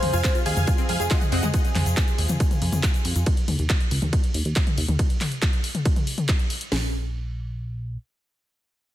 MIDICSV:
0, 0, Header, 1, 7, 480
1, 0, Start_track
1, 0, Tempo, 431655
1, 1710, Time_signature, 4, 2, 24, 8
1, 9947, End_track
2, 0, Start_track
2, 0, Title_t, "Supersaw synth"
2, 0, Program_c, 0, 81
2, 148, Note_on_c, 0, 80, 93
2, 149, Note_on_c, 0, 77, 80
2, 371, Note_off_c, 0, 77, 0
2, 371, Note_off_c, 0, 80, 0
2, 511, Note_on_c, 0, 77, 79
2, 511, Note_on_c, 0, 80, 96
2, 806, Note_off_c, 0, 77, 0
2, 806, Note_off_c, 0, 80, 0
2, 988, Note_on_c, 0, 80, 85
2, 989, Note_on_c, 0, 77, 77
2, 1137, Note_off_c, 0, 77, 0
2, 1137, Note_off_c, 0, 80, 0
2, 1229, Note_on_c, 0, 75, 84
2, 1229, Note_on_c, 0, 78, 94
2, 1377, Note_off_c, 0, 75, 0
2, 1377, Note_off_c, 0, 78, 0
2, 1466, Note_on_c, 0, 78, 93
2, 1467, Note_on_c, 0, 75, 83
2, 1616, Note_off_c, 0, 75, 0
2, 1616, Note_off_c, 0, 78, 0
2, 9947, End_track
3, 0, Start_track
3, 0, Title_t, "Soft synth lead"
3, 0, Program_c, 1, 80
3, 0, Note_on_c, 1, 72, 102
3, 414, Note_off_c, 1, 72, 0
3, 9947, End_track
4, 0, Start_track
4, 0, Title_t, "Synth pluck"
4, 0, Program_c, 2, 84
4, 149, Note_on_c, 2, 65, 77
4, 197, Note_off_c, 2, 65, 0
4, 269, Note_on_c, 2, 60, 100
4, 348, Note_off_c, 2, 60, 0
4, 390, Note_on_c, 2, 65, 104
4, 468, Note_off_c, 2, 65, 0
4, 510, Note_on_c, 2, 68, 109
4, 588, Note_off_c, 2, 68, 0
4, 750, Note_on_c, 2, 65, 81
4, 864, Note_off_c, 2, 65, 0
4, 872, Note_on_c, 2, 60, 80
4, 949, Note_off_c, 2, 60, 0
4, 991, Note_on_c, 2, 56, 80
4, 1037, Note_off_c, 2, 56, 0
4, 1111, Note_on_c, 2, 68, 78
4, 1189, Note_off_c, 2, 68, 0
4, 1231, Note_on_c, 2, 65, 106
4, 1309, Note_off_c, 2, 65, 0
4, 1472, Note_on_c, 2, 60, 104
4, 1585, Note_off_c, 2, 60, 0
4, 1593, Note_on_c, 2, 56, 105
4, 1670, Note_off_c, 2, 56, 0
4, 9947, End_track
5, 0, Start_track
5, 0, Title_t, "String section"
5, 0, Program_c, 3, 48
5, 0, Note_on_c, 3, 48, 83
5, 0, Note_on_c, 3, 53, 72
5, 0, Note_on_c, 3, 56, 74
5, 0, Note_on_c, 3, 65, 92
5, 0, Note_on_c, 3, 68, 90
5, 3587, Note_off_c, 3, 53, 0
5, 3587, Note_off_c, 3, 56, 0
5, 3587, Note_off_c, 3, 65, 0
5, 3594, Note_off_c, 3, 48, 0
5, 3594, Note_off_c, 3, 68, 0
5, 9947, End_track
6, 0, Start_track
6, 0, Title_t, "Analog synth bass"
6, 0, Program_c, 4, 38
6, 31, Note_on_c, 4, 41, 95
6, 126, Note_off_c, 4, 41, 0
6, 151, Note_on_c, 4, 41, 79
6, 246, Note_off_c, 4, 41, 0
6, 511, Note_on_c, 4, 39, 96
6, 606, Note_off_c, 4, 39, 0
6, 632, Note_on_c, 4, 41, 79
6, 727, Note_off_c, 4, 41, 0
6, 991, Note_on_c, 4, 41, 93
6, 1086, Note_off_c, 4, 41, 0
6, 1111, Note_on_c, 4, 41, 81
6, 1207, Note_off_c, 4, 41, 0
6, 1470, Note_on_c, 4, 41, 97
6, 1566, Note_off_c, 4, 41, 0
6, 1591, Note_on_c, 4, 41, 82
6, 1686, Note_off_c, 4, 41, 0
6, 1950, Note_on_c, 4, 41, 92
6, 2046, Note_off_c, 4, 41, 0
6, 2070, Note_on_c, 4, 41, 82
6, 2166, Note_off_c, 4, 41, 0
6, 2430, Note_on_c, 4, 39, 94
6, 2526, Note_off_c, 4, 39, 0
6, 2550, Note_on_c, 4, 41, 82
6, 2646, Note_off_c, 4, 41, 0
6, 2911, Note_on_c, 4, 41, 93
6, 3006, Note_off_c, 4, 41, 0
6, 3031, Note_on_c, 4, 41, 81
6, 3126, Note_off_c, 4, 41, 0
6, 3390, Note_on_c, 4, 41, 99
6, 3486, Note_off_c, 4, 41, 0
6, 3511, Note_on_c, 4, 41, 85
6, 3606, Note_off_c, 4, 41, 0
6, 3871, Note_on_c, 4, 39, 92
6, 3966, Note_off_c, 4, 39, 0
6, 3992, Note_on_c, 4, 39, 78
6, 4087, Note_off_c, 4, 39, 0
6, 4351, Note_on_c, 4, 37, 93
6, 4446, Note_off_c, 4, 37, 0
6, 4470, Note_on_c, 4, 39, 80
6, 4566, Note_off_c, 4, 39, 0
6, 4830, Note_on_c, 4, 39, 96
6, 4926, Note_off_c, 4, 39, 0
6, 4950, Note_on_c, 4, 39, 80
6, 5046, Note_off_c, 4, 39, 0
6, 5311, Note_on_c, 4, 39, 95
6, 5406, Note_off_c, 4, 39, 0
6, 5431, Note_on_c, 4, 39, 83
6, 5526, Note_off_c, 4, 39, 0
6, 7471, Note_on_c, 4, 34, 98
6, 8866, Note_off_c, 4, 34, 0
6, 9947, End_track
7, 0, Start_track
7, 0, Title_t, "Drums"
7, 29, Note_on_c, 9, 46, 108
7, 29, Note_on_c, 9, 47, 80
7, 141, Note_off_c, 9, 46, 0
7, 141, Note_off_c, 9, 47, 0
7, 150, Note_on_c, 9, 42, 51
7, 150, Note_on_c, 9, 82, 86
7, 261, Note_off_c, 9, 42, 0
7, 262, Note_off_c, 9, 82, 0
7, 265, Note_on_c, 9, 82, 62
7, 269, Note_on_c, 9, 39, 117
7, 269, Note_on_c, 9, 42, 81
7, 269, Note_on_c, 9, 51, 71
7, 271, Note_on_c, 9, 36, 122
7, 376, Note_off_c, 9, 82, 0
7, 381, Note_off_c, 9, 39, 0
7, 381, Note_off_c, 9, 42, 0
7, 381, Note_off_c, 9, 51, 0
7, 382, Note_off_c, 9, 36, 0
7, 389, Note_on_c, 9, 82, 42
7, 390, Note_on_c, 9, 42, 51
7, 501, Note_off_c, 9, 42, 0
7, 501, Note_off_c, 9, 82, 0
7, 509, Note_on_c, 9, 46, 108
7, 621, Note_off_c, 9, 46, 0
7, 630, Note_on_c, 9, 42, 54
7, 630, Note_on_c, 9, 47, 67
7, 630, Note_on_c, 9, 82, 80
7, 741, Note_off_c, 9, 42, 0
7, 741, Note_off_c, 9, 47, 0
7, 741, Note_off_c, 9, 82, 0
7, 749, Note_on_c, 9, 42, 74
7, 749, Note_on_c, 9, 51, 66
7, 751, Note_on_c, 9, 36, 121
7, 754, Note_on_c, 9, 82, 67
7, 861, Note_off_c, 9, 42, 0
7, 861, Note_off_c, 9, 51, 0
7, 862, Note_off_c, 9, 36, 0
7, 865, Note_off_c, 9, 82, 0
7, 866, Note_on_c, 9, 82, 36
7, 870, Note_on_c, 9, 42, 51
7, 977, Note_off_c, 9, 82, 0
7, 981, Note_off_c, 9, 42, 0
7, 990, Note_on_c, 9, 46, 106
7, 1101, Note_off_c, 9, 46, 0
7, 1120, Note_on_c, 9, 82, 82
7, 1230, Note_on_c, 9, 39, 113
7, 1230, Note_on_c, 9, 42, 78
7, 1230, Note_on_c, 9, 51, 70
7, 1231, Note_off_c, 9, 82, 0
7, 1231, Note_on_c, 9, 36, 126
7, 1341, Note_off_c, 9, 39, 0
7, 1341, Note_off_c, 9, 42, 0
7, 1341, Note_off_c, 9, 51, 0
7, 1342, Note_off_c, 9, 36, 0
7, 1349, Note_on_c, 9, 82, 43
7, 1350, Note_on_c, 9, 42, 52
7, 1350, Note_on_c, 9, 47, 84
7, 1460, Note_off_c, 9, 82, 0
7, 1461, Note_off_c, 9, 42, 0
7, 1461, Note_off_c, 9, 47, 0
7, 1469, Note_on_c, 9, 46, 111
7, 1580, Note_off_c, 9, 46, 0
7, 1587, Note_on_c, 9, 82, 74
7, 1589, Note_on_c, 9, 42, 58
7, 1589, Note_on_c, 9, 47, 86
7, 1698, Note_off_c, 9, 82, 0
7, 1701, Note_off_c, 9, 42, 0
7, 1701, Note_off_c, 9, 47, 0
7, 1709, Note_on_c, 9, 42, 80
7, 1709, Note_on_c, 9, 51, 69
7, 1711, Note_on_c, 9, 36, 114
7, 1713, Note_on_c, 9, 82, 65
7, 1820, Note_off_c, 9, 42, 0
7, 1820, Note_off_c, 9, 51, 0
7, 1822, Note_off_c, 9, 36, 0
7, 1824, Note_off_c, 9, 82, 0
7, 1830, Note_on_c, 9, 42, 52
7, 1831, Note_on_c, 9, 82, 40
7, 1941, Note_off_c, 9, 42, 0
7, 1943, Note_off_c, 9, 82, 0
7, 1950, Note_on_c, 9, 39, 59
7, 1950, Note_on_c, 9, 46, 106
7, 1950, Note_on_c, 9, 47, 83
7, 2061, Note_off_c, 9, 39, 0
7, 2061, Note_off_c, 9, 46, 0
7, 2061, Note_off_c, 9, 47, 0
7, 2070, Note_on_c, 9, 42, 56
7, 2075, Note_on_c, 9, 82, 80
7, 2181, Note_off_c, 9, 42, 0
7, 2187, Note_off_c, 9, 82, 0
7, 2189, Note_on_c, 9, 82, 69
7, 2190, Note_on_c, 9, 39, 115
7, 2190, Note_on_c, 9, 42, 78
7, 2190, Note_on_c, 9, 51, 69
7, 2191, Note_on_c, 9, 36, 122
7, 2300, Note_off_c, 9, 82, 0
7, 2302, Note_off_c, 9, 36, 0
7, 2302, Note_off_c, 9, 39, 0
7, 2302, Note_off_c, 9, 42, 0
7, 2302, Note_off_c, 9, 51, 0
7, 2307, Note_on_c, 9, 82, 37
7, 2310, Note_on_c, 9, 42, 54
7, 2418, Note_off_c, 9, 82, 0
7, 2421, Note_off_c, 9, 42, 0
7, 2429, Note_on_c, 9, 46, 108
7, 2540, Note_off_c, 9, 46, 0
7, 2544, Note_on_c, 9, 82, 80
7, 2550, Note_on_c, 9, 42, 56
7, 2550, Note_on_c, 9, 47, 69
7, 2655, Note_off_c, 9, 82, 0
7, 2661, Note_off_c, 9, 42, 0
7, 2661, Note_off_c, 9, 47, 0
7, 2670, Note_on_c, 9, 42, 82
7, 2670, Note_on_c, 9, 51, 71
7, 2671, Note_on_c, 9, 36, 122
7, 2678, Note_on_c, 9, 82, 58
7, 2781, Note_off_c, 9, 42, 0
7, 2781, Note_off_c, 9, 51, 0
7, 2782, Note_off_c, 9, 36, 0
7, 2789, Note_off_c, 9, 82, 0
7, 2790, Note_on_c, 9, 42, 55
7, 2790, Note_on_c, 9, 47, 85
7, 2798, Note_on_c, 9, 82, 37
7, 2901, Note_off_c, 9, 42, 0
7, 2901, Note_off_c, 9, 47, 0
7, 2909, Note_off_c, 9, 82, 0
7, 2910, Note_on_c, 9, 46, 103
7, 3021, Note_off_c, 9, 46, 0
7, 3030, Note_on_c, 9, 42, 50
7, 3030, Note_on_c, 9, 47, 85
7, 3034, Note_on_c, 9, 82, 78
7, 3141, Note_off_c, 9, 42, 0
7, 3141, Note_off_c, 9, 47, 0
7, 3145, Note_off_c, 9, 82, 0
7, 3149, Note_on_c, 9, 39, 115
7, 3149, Note_on_c, 9, 42, 82
7, 3149, Note_on_c, 9, 51, 71
7, 3151, Note_on_c, 9, 36, 119
7, 3153, Note_on_c, 9, 82, 60
7, 3260, Note_off_c, 9, 39, 0
7, 3260, Note_off_c, 9, 42, 0
7, 3260, Note_off_c, 9, 51, 0
7, 3262, Note_off_c, 9, 36, 0
7, 3264, Note_off_c, 9, 82, 0
7, 3269, Note_on_c, 9, 42, 55
7, 3283, Note_on_c, 9, 82, 44
7, 3380, Note_off_c, 9, 42, 0
7, 3389, Note_on_c, 9, 46, 105
7, 3394, Note_off_c, 9, 82, 0
7, 3501, Note_off_c, 9, 46, 0
7, 3510, Note_on_c, 9, 42, 65
7, 3510, Note_on_c, 9, 82, 78
7, 3621, Note_off_c, 9, 42, 0
7, 3621, Note_off_c, 9, 82, 0
7, 3629, Note_on_c, 9, 42, 84
7, 3629, Note_on_c, 9, 51, 75
7, 3631, Note_on_c, 9, 36, 112
7, 3741, Note_off_c, 9, 42, 0
7, 3741, Note_off_c, 9, 51, 0
7, 3742, Note_off_c, 9, 36, 0
7, 3749, Note_on_c, 9, 42, 54
7, 3860, Note_off_c, 9, 42, 0
7, 3870, Note_on_c, 9, 46, 100
7, 3870, Note_on_c, 9, 47, 82
7, 3981, Note_off_c, 9, 46, 0
7, 3981, Note_off_c, 9, 47, 0
7, 3991, Note_on_c, 9, 42, 59
7, 4102, Note_off_c, 9, 42, 0
7, 4110, Note_on_c, 9, 39, 122
7, 4110, Note_on_c, 9, 42, 80
7, 4110, Note_on_c, 9, 51, 71
7, 4111, Note_on_c, 9, 36, 114
7, 4222, Note_off_c, 9, 36, 0
7, 4222, Note_off_c, 9, 39, 0
7, 4222, Note_off_c, 9, 42, 0
7, 4222, Note_off_c, 9, 51, 0
7, 4231, Note_on_c, 9, 42, 55
7, 4342, Note_off_c, 9, 42, 0
7, 4350, Note_on_c, 9, 46, 106
7, 4461, Note_off_c, 9, 46, 0
7, 4471, Note_on_c, 9, 42, 58
7, 4471, Note_on_c, 9, 47, 67
7, 4582, Note_off_c, 9, 42, 0
7, 4582, Note_off_c, 9, 47, 0
7, 4591, Note_on_c, 9, 36, 113
7, 4591, Note_on_c, 9, 42, 84
7, 4591, Note_on_c, 9, 51, 71
7, 4702, Note_off_c, 9, 36, 0
7, 4702, Note_off_c, 9, 42, 0
7, 4702, Note_off_c, 9, 51, 0
7, 4711, Note_on_c, 9, 42, 55
7, 4822, Note_off_c, 9, 42, 0
7, 4830, Note_on_c, 9, 46, 103
7, 4942, Note_off_c, 9, 46, 0
7, 4951, Note_on_c, 9, 42, 56
7, 5062, Note_off_c, 9, 42, 0
7, 5070, Note_on_c, 9, 39, 123
7, 5070, Note_on_c, 9, 42, 84
7, 5070, Note_on_c, 9, 51, 75
7, 5071, Note_on_c, 9, 36, 118
7, 5181, Note_off_c, 9, 39, 0
7, 5181, Note_off_c, 9, 42, 0
7, 5181, Note_off_c, 9, 51, 0
7, 5182, Note_off_c, 9, 36, 0
7, 5191, Note_on_c, 9, 42, 55
7, 5191, Note_on_c, 9, 47, 85
7, 5302, Note_off_c, 9, 42, 0
7, 5302, Note_off_c, 9, 47, 0
7, 5311, Note_on_c, 9, 46, 106
7, 5422, Note_off_c, 9, 46, 0
7, 5431, Note_on_c, 9, 42, 67
7, 5431, Note_on_c, 9, 47, 85
7, 5543, Note_off_c, 9, 42, 0
7, 5543, Note_off_c, 9, 47, 0
7, 5550, Note_on_c, 9, 36, 119
7, 5550, Note_on_c, 9, 42, 84
7, 5550, Note_on_c, 9, 51, 72
7, 5662, Note_off_c, 9, 36, 0
7, 5662, Note_off_c, 9, 42, 0
7, 5662, Note_off_c, 9, 51, 0
7, 5671, Note_on_c, 9, 42, 55
7, 5782, Note_off_c, 9, 42, 0
7, 5792, Note_on_c, 9, 39, 64
7, 5792, Note_on_c, 9, 46, 103
7, 5792, Note_on_c, 9, 47, 76
7, 5903, Note_off_c, 9, 39, 0
7, 5903, Note_off_c, 9, 46, 0
7, 5903, Note_off_c, 9, 47, 0
7, 5911, Note_on_c, 9, 42, 57
7, 6023, Note_off_c, 9, 42, 0
7, 6030, Note_on_c, 9, 36, 119
7, 6031, Note_on_c, 9, 39, 118
7, 6031, Note_on_c, 9, 42, 88
7, 6031, Note_on_c, 9, 51, 71
7, 6142, Note_off_c, 9, 36, 0
7, 6142, Note_off_c, 9, 39, 0
7, 6142, Note_off_c, 9, 42, 0
7, 6142, Note_off_c, 9, 51, 0
7, 6151, Note_on_c, 9, 42, 56
7, 6262, Note_off_c, 9, 42, 0
7, 6270, Note_on_c, 9, 46, 107
7, 6381, Note_off_c, 9, 46, 0
7, 6390, Note_on_c, 9, 42, 60
7, 6390, Note_on_c, 9, 47, 63
7, 6502, Note_off_c, 9, 42, 0
7, 6502, Note_off_c, 9, 47, 0
7, 6510, Note_on_c, 9, 42, 84
7, 6510, Note_on_c, 9, 51, 68
7, 6511, Note_on_c, 9, 36, 118
7, 6621, Note_off_c, 9, 42, 0
7, 6621, Note_off_c, 9, 51, 0
7, 6622, Note_off_c, 9, 36, 0
7, 6631, Note_on_c, 9, 42, 54
7, 6631, Note_on_c, 9, 47, 81
7, 6742, Note_off_c, 9, 42, 0
7, 6742, Note_off_c, 9, 47, 0
7, 6751, Note_on_c, 9, 46, 103
7, 6862, Note_off_c, 9, 46, 0
7, 6870, Note_on_c, 9, 42, 55
7, 6870, Note_on_c, 9, 47, 80
7, 6981, Note_off_c, 9, 42, 0
7, 6981, Note_off_c, 9, 47, 0
7, 6990, Note_on_c, 9, 39, 125
7, 6990, Note_on_c, 9, 42, 87
7, 6990, Note_on_c, 9, 51, 75
7, 6991, Note_on_c, 9, 36, 117
7, 7101, Note_off_c, 9, 39, 0
7, 7101, Note_off_c, 9, 42, 0
7, 7101, Note_off_c, 9, 51, 0
7, 7102, Note_off_c, 9, 36, 0
7, 7109, Note_on_c, 9, 42, 55
7, 7221, Note_off_c, 9, 42, 0
7, 7229, Note_on_c, 9, 46, 109
7, 7341, Note_off_c, 9, 46, 0
7, 7350, Note_on_c, 9, 42, 70
7, 7461, Note_off_c, 9, 42, 0
7, 7471, Note_on_c, 9, 38, 106
7, 7471, Note_on_c, 9, 46, 90
7, 7582, Note_off_c, 9, 38, 0
7, 7582, Note_off_c, 9, 46, 0
7, 9947, End_track
0, 0, End_of_file